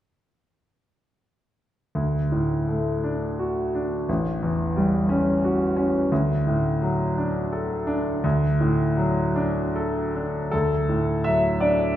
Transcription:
1.95 4.04 D2 soft
2.32 2.89 A2 soft
2.68 3.25 A3 soft
3.04 3.60 D4 soft
3.39 3.95 F#4 soft
3.75 4.09 D4 soft
4.09 6.07 A1 soft
4.43 4.96 E2 soft
4.77 5.30 G3 soft
5.09 5.63 C#4 soft
5.44 5.98 F#4 soft
5.77 6.11 C#4 soft
6.12 8.21 D2 soft
6.47 7.04 A2 soft
6.82 7.39 F#3 soft
7.18 7.74 D4 soft
7.52 8.09 A4 soft
7.87 8.45 D4 soft
8.24 10.49 D2 soft
8.60 9.20 A2 soft
8.97 9.58 F#3 soft
9.36 9.98 D4 soft
9.76 10.39 A4 soft
10.15 10.53 D4 soft
10.51 11.96 D2 soft
10.51 11.25 A4 soft
10.89 11.47 A2 soft
11.24 11.84 F#3 soft
11.24 11.61 E5 soft
11.60 11.96 D4 soft
11.60 11.96 D5 soft

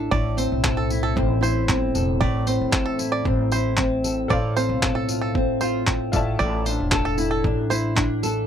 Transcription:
0.00 0.11 A2 medium
0.00 0.17 D4 medium
0.00 0.91 E4 medium
0.00 0.63 A4 medium
0.11 0.48 A1 loud
0.11 2.20 A2 medium
0.11 0.38 D5 loud
0.11 kick loud
0.37 1.15 C4 medium
0.37 0.63 C5 medium
0.37 tambourine medium
0.52 1.14 B1 medium
0.64 1.94 A4 medium
0.64 kick loud
0.64 clap loud
0.77 0.90 A4 medium
0.90 1.40 E4 medium
0.90 tambourine medium
1.03 1.16 A4 medium
1.16 1.70 A1 loud
1.16 1.68 C4 medium
1.16 kick loud
1.41 2.98 E4 medium
1.41 1.79 C5 medium
1.41 tambourine medium
1.69 1.93 G1 medium
1.69 2.46 C4 medium
1.69 kick loud
1.69 clap loud
1.94 2.19 E1 medium
1.94 2.71 A4 medium
1.94 tambourine medium
2.21 2.57 A1 loud
2.21 4.28 A2 medium
2.21 2.47 D5 loud
2.21 kick loud
2.47 3.25 C4 medium
2.47 2.72 C5 medium
2.47 tambourine medium
2.61 3.23 A1 medium
2.71 4.04 A4 medium
2.71 kick loud
2.71 clap loud
2.86 2.98 A4 medium
2.99 3.51 E4 medium
2.99 tambourine medium
3.12 3.25 D5 medium
3.25 4.26 A1 loud
3.25 3.77 C4 medium
3.25 kick loud
3.52 4.36 E4 medium
3.52 3.89 C5 medium
3.52 tambourine medium
3.77 4.35 C4 medium
3.77 kick medium
3.77 clap medium
4.04 4.82 A4 medium
4.04 tambourine medium
4.28 4.67 A1 loud
4.28 6.12 A2 medium
4.28 6.09 A4 medium
4.28 6.10 C5 medium
4.28 4.55 D5 loud
4.28 kick loud
4.33 6.11 F5 medium
4.56 5.34 C4 medium
4.56 4.81 C5 medium
4.56 tambourine medium
4.69 5.36 B1 medium
4.83 6.92 A4 medium
4.83 kick loud
4.83 clap loud
4.95 5.08 A4 medium
5.09 5.61 F4 medium
5.09 tambourine medium
5.21 5.34 A4 medium
5.35 5.88 A1 loud
5.35 5.85 C4 medium
5.35 kick loud
5.61 7.17 F4 medium
5.61 5.98 C5 medium
5.61 tambourine medium
5.86 6.12 G1 medium
5.86 6.18 C4 medium
5.86 kick medium
5.86 clap loud
6.12 6.38 A1 medium
6.12 6.38 A2 medium
6.12 8.18 F4 medium
6.12 8.19 A4 medium
6.12 8.19 D5 medium
6.12 8.20 E5 medium
6.12 kick loud
6.12 tambourine medium
6.16 8.20 A5 medium
6.39 6.76 A1 loud
6.39 8.46 A2 medium
6.39 6.66 D5 loud
6.65 7.43 D4 medium
6.65 6.91 C5 medium
6.65 tambourine medium
6.80 7.42 E1 medium
6.92 8.23 A4 medium
6.92 kick loud
6.92 clap loud
7.05 7.18 A4 medium
7.17 7.69 E4 medium
7.17 tambourine medium
7.31 7.43 A4 medium
7.44 8.45 A1 loud
7.44 7.94 D4 medium
7.44 kick loud
7.70 8.47 E4 medium
7.70 8.07 C5 medium
7.70 tambourine medium
7.95 8.47 D4 medium
7.95 kick loud
7.95 clap loud
8.23 8.47 A4 medium
8.23 tambourine medium

